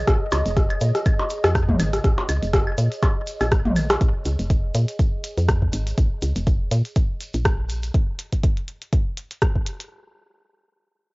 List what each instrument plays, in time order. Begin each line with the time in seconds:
Already playing: ambient pad G#4 C#5 D#5
0.07 fm bass A#1, kick, cross-stick, closed hi-hat, shaker
0.32 fm bass C#2, closed hi-hat, claves, percussion blips, shaker
0.46 fm bass F1, closed hi-hat, shaker
0.57 kick, cross-stick, closed hi-hat, shaker
0.70 closed hi-hat, claves
0.81 fm bass A#2, closed hi-hat, shaker
0.95 cross-stick, closed hi-hat, shaker
1.05 kick, closed hi-hat, claves, shaker
1.20 percussion blips
1.30 closed hi-hat, shaker
1.44 fm bass F2, cross-stick, closed hi-hat, claves, shaker
1.55 kick, cross-stick, closed hi-hat, shaker
1.69 kick, mid tom
1.80 fm bass G#1, closed hi-hat, claves, shaker
1.93 cross-stick, closed hi-hat, shaker
2.04 fm bass A#1, kick, cross-stick, closed hi-hat, shaker
2.18 percussion blips
2.29 fm bass C#2, closed hi-hat, claves, shaker
2.42 fm bass F1, closed hi-hat, shaker
2.53 kick, cross-stick, closed hi-hat, shaker
2.67 claves
2.78 fm bass A#2, closed hi-hat, shaker
2.92 closed hi-hat, shaker
3.02 kick, cross-stick, closed hi-hat, claves, percussion blips, shaker
3.27 closed hi-hat, shaker
3.41 fm bass A#1, cross-stick, closed hi-hat, claves, shaker
3.52 kick, cross-stick, closed hi-hat, shaker
3.65 mid tom
3.76 closed hi-hat, claves, shaker
3.89 cross-stick, closed hi-hat, percussion blips, shaker
4.01 fm bass A#1, kick, closed hi-hat, shaker
4.25 fm bass C#2, closed hi-hat, shaker
4.39 fm bass F1, closed hi-hat, shaker
4.50 kick, closed hi-hat, shaker
4.75 fm bass A#2, closed hi-hat, shaker
4.88 closed hi-hat, shaker
4.99 kick, closed hi-hat, shaker
5.24 closed hi-hat, shaker
5.38 fm bass F2, closed hi-hat, shaker
5.48 kick, cross-stick, closed hi-hat, shaker
5.62 kick
5.73 fm bass G#1, closed hi-hat, shaker
5.87 closed hi-hat, shaker
5.98 fm bass A#1, kick, closed hi-hat, shaker
6.22 fm bass C#2, closed hi-hat, shaker
6.36 fm bass F1, closed hi-hat, shaker
6.47 kick, closed hi-hat, shaker
6.71 fm bass A#2, closed hi-hat, shaker
6.85 closed hi-hat, shaker
6.96 kick, closed hi-hat, shaker
7.21 closed hi-hat, shaker
7.33 fm bass A#1, closed hi-hat, shaker
7.45 kick, cross-stick, closed hi-hat, shaker
7.69 closed hi-hat, shaker
7.83 closed hi-hat, shaker
7.94 kick, closed hi-hat
8.19 closed hi-hat
8.33 kick, closed hi-hat
8.44 kick, closed hi-hat
8.57 closed hi-hat
8.68 closed hi-hat
8.82 closed hi-hat
8.93 kick, closed hi-hat
9.17 closed hi-hat
9.31 closed hi-hat
9.42 kick, cross-stick, closed hi-hat
9.56 kick
9.66 closed hi-hat
9.80 closed hi-hat